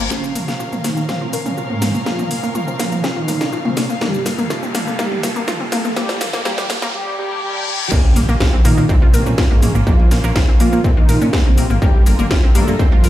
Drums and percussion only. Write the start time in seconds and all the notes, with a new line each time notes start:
0.11 snare, shaker
0.24 shaker
0.35 mid tom, open hi-hat, shaker
0.48 snare, shaker
0.60 shaker
0.73 mid tom, shaker
0.84 snare, open hi-hat, shaker
0.97 shaker
1.09 snare, mid tom, shaker
1.33 open hi-hat, shaker
1.46 mid tom, shaker
1.58 shaker
1.82 snare, mid tom, open hi-hat, shaker
1.95 shaker
2.06 snare, shaker
2.19 mid tom, shaker
2.31 open hi-hat, shaker
2.43 shaker
2.55 mid tom, shaker
2.68 shaker
2.80 snare, open hi-hat, shaker
2.92 mid tom, shaker
3.04 snare, shaker
3.28 mid tom, open hi-hat, shaker
3.41 snare, shaker
3.53 shaker
3.65 mid tom
3.77 snare, open hi-hat, shaker
3.90 shaker
4.01 snare, mid tom, shaker
4.14 shaker
4.26 snare, open hi-hat, shaker
4.38 mid tom, shaker
4.50 snare, shaker
4.63 shaker
4.75 snare, mid tom, open hi-hat, shaker
4.87 shaker
4.99 snare, shaker
5.12 mid tom
5.23 snare, open hi-hat, shaker
5.36 shaker
5.48 snare, mid tom, shaker
5.72 snare, open hi-hat, shaker
5.85 mid tom, shaker
5.96 snare, shaker
6.09 snare, shaker
6.21 snare, mid tom, open hi-hat, shaker
6.33 snare, shaker
6.45 snare, shaker
6.58 snare, mid tom, shaker
6.70 snare, open hi-hat, shaker
6.82 snare, shaker
7.92 kick, crash, shaker
8.16 mid tom, open hi-hat, shaker
8.29 shaker
8.40 kick, snare, shaker
8.53 mid tom
8.65 open hi-hat, shaker
8.78 shaker
8.89 kick, mid tom, shaker
9.14 open hi-hat, shaker
9.26 mid tom, shaker
9.38 kick, snare, shaker
9.62 mid tom, open hi-hat, shaker
9.75 shaker
9.87 kick, shaker
10.00 mid tom
10.11 snare, open hi-hat, shaker
10.24 shaker
10.36 kick, snare, mid tom, shaker
10.60 open hi-hat, shaker
10.73 mid tom, shaker
10.84 kick, shaker
11.09 mid tom, open hi-hat, shaker
11.21 shaker
11.33 kick, snare, shaker
11.46 mid tom
11.58 open hi-hat, shaker
11.70 shaker
11.82 kick, mid tom, shaker
12.06 open hi-hat, shaker
12.19 mid tom, shaker
12.31 kick, snare, shaker
12.55 mid tom, open hi-hat, shaker
12.68 shaker
12.79 kick, shaker
12.92 mid tom
13.04 open hi-hat, shaker